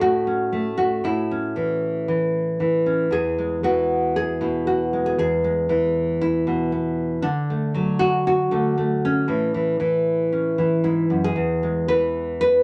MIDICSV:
0, 0, Header, 1, 2, 480
1, 0, Start_track
1, 0, Tempo, 516351
1, 958, Time_signature, 4, 2, 24, 8
1, 11743, End_track
2, 0, Start_track
2, 0, Title_t, "Nylon-string guitar"
2, 0, Program_c, 0, 24
2, 0, Note_on_c, 0, 57, 65
2, 0, Note_on_c, 0, 61, 51
2, 2, Note_on_c, 0, 45, 58
2, 13, Note_on_c, 0, 66, 99
2, 240, Note_off_c, 0, 61, 0
2, 251, Note_on_c, 0, 61, 51
2, 476, Note_off_c, 0, 57, 0
2, 487, Note_on_c, 0, 57, 66
2, 710, Note_off_c, 0, 66, 0
2, 721, Note_on_c, 0, 66, 93
2, 931, Note_off_c, 0, 45, 0
2, 934, Note_off_c, 0, 57, 0
2, 935, Note_off_c, 0, 61, 0
2, 960, Note_off_c, 0, 66, 0
2, 966, Note_on_c, 0, 45, 75
2, 973, Note_on_c, 0, 64, 85
2, 1221, Note_on_c, 0, 61, 51
2, 1448, Note_off_c, 0, 61, 0
2, 1449, Note_on_c, 0, 52, 59
2, 1459, Note_on_c, 0, 61, 43
2, 1925, Note_off_c, 0, 52, 0
2, 1936, Note_on_c, 0, 52, 57
2, 2406, Note_off_c, 0, 52, 0
2, 2417, Note_on_c, 0, 52, 57
2, 2649, Note_off_c, 0, 61, 0
2, 2660, Note_on_c, 0, 61, 46
2, 2863, Note_off_c, 0, 45, 0
2, 2866, Note_off_c, 0, 61, 0
2, 2889, Note_on_c, 0, 40, 66
2, 2895, Note_off_c, 0, 64, 0
2, 2903, Note_on_c, 0, 68, 98
2, 3146, Note_on_c, 0, 56, 47
2, 3366, Note_off_c, 0, 52, 0
2, 3376, Note_off_c, 0, 68, 0
2, 3377, Note_on_c, 0, 52, 61
2, 3385, Note_on_c, 0, 66, 94
2, 3858, Note_off_c, 0, 66, 0
2, 3868, Note_on_c, 0, 68, 89
2, 4098, Note_on_c, 0, 47, 59
2, 4106, Note_on_c, 0, 64, 45
2, 4338, Note_off_c, 0, 68, 0
2, 4341, Note_on_c, 0, 66, 80
2, 4573, Note_off_c, 0, 56, 0
2, 4584, Note_on_c, 0, 56, 45
2, 4696, Note_off_c, 0, 66, 0
2, 4703, Note_on_c, 0, 68, 84
2, 4808, Note_off_c, 0, 40, 0
2, 4814, Note_off_c, 0, 47, 0
2, 4814, Note_off_c, 0, 68, 0
2, 4819, Note_on_c, 0, 40, 66
2, 4825, Note_on_c, 0, 68, 104
2, 5049, Note_off_c, 0, 56, 0
2, 5060, Note_on_c, 0, 56, 48
2, 5282, Note_off_c, 0, 52, 0
2, 5286, Note_off_c, 0, 64, 0
2, 5292, Note_on_c, 0, 52, 65
2, 5299, Note_on_c, 0, 64, 47
2, 5766, Note_off_c, 0, 64, 0
2, 5777, Note_on_c, 0, 64, 73
2, 6014, Note_on_c, 0, 47, 60
2, 6245, Note_off_c, 0, 68, 0
2, 6249, Note_on_c, 0, 59, 45
2, 6711, Note_off_c, 0, 59, 0
2, 6715, Note_on_c, 0, 62, 91
2, 6718, Note_off_c, 0, 47, 0
2, 6722, Note_on_c, 0, 50, 71
2, 6725, Note_off_c, 0, 52, 0
2, 6727, Note_off_c, 0, 40, 0
2, 6728, Note_off_c, 0, 56, 0
2, 6728, Note_off_c, 0, 64, 0
2, 6974, Note_on_c, 0, 57, 49
2, 7199, Note_on_c, 0, 54, 62
2, 7204, Note_off_c, 0, 57, 0
2, 7208, Note_on_c, 0, 57, 46
2, 7430, Note_on_c, 0, 66, 111
2, 7675, Note_off_c, 0, 66, 0
2, 7687, Note_on_c, 0, 66, 98
2, 7902, Note_off_c, 0, 50, 0
2, 7908, Note_off_c, 0, 57, 0
2, 7913, Note_on_c, 0, 50, 64
2, 7915, Note_off_c, 0, 62, 0
2, 7919, Note_on_c, 0, 57, 51
2, 8146, Note_off_c, 0, 57, 0
2, 8158, Note_on_c, 0, 57, 50
2, 8412, Note_on_c, 0, 61, 74
2, 8605, Note_off_c, 0, 50, 0
2, 8607, Note_off_c, 0, 54, 0
2, 8608, Note_off_c, 0, 57, 0
2, 8625, Note_on_c, 0, 45, 70
2, 8630, Note_on_c, 0, 52, 46
2, 8641, Note_off_c, 0, 66, 0
2, 8868, Note_off_c, 0, 52, 0
2, 8872, Note_on_c, 0, 52, 50
2, 9104, Note_off_c, 0, 52, 0
2, 9108, Note_on_c, 0, 52, 60
2, 9111, Note_off_c, 0, 61, 0
2, 9114, Note_on_c, 0, 64, 45
2, 9598, Note_on_c, 0, 61, 42
2, 9837, Note_off_c, 0, 52, 0
2, 9837, Note_on_c, 0, 52, 62
2, 9842, Note_off_c, 0, 64, 0
2, 9846, Note_on_c, 0, 64, 42
2, 10070, Note_off_c, 0, 45, 0
2, 10074, Note_on_c, 0, 44, 55
2, 10078, Note_off_c, 0, 64, 0
2, 10078, Note_on_c, 0, 64, 74
2, 10315, Note_off_c, 0, 44, 0
2, 10319, Note_on_c, 0, 42, 61
2, 10442, Note_off_c, 0, 64, 0
2, 10452, Note_on_c, 0, 68, 95
2, 10536, Note_off_c, 0, 61, 0
2, 10554, Note_off_c, 0, 42, 0
2, 10558, Note_on_c, 0, 40, 71
2, 10811, Note_on_c, 0, 56, 47
2, 11043, Note_off_c, 0, 68, 0
2, 11047, Note_on_c, 0, 71, 98
2, 11052, Note_off_c, 0, 52, 0
2, 11052, Note_on_c, 0, 52, 56
2, 11523, Note_off_c, 0, 71, 0
2, 11535, Note_on_c, 0, 71, 112
2, 11743, Note_off_c, 0, 40, 0
2, 11743, Note_off_c, 0, 52, 0
2, 11743, Note_off_c, 0, 56, 0
2, 11743, Note_off_c, 0, 71, 0
2, 11743, End_track
0, 0, End_of_file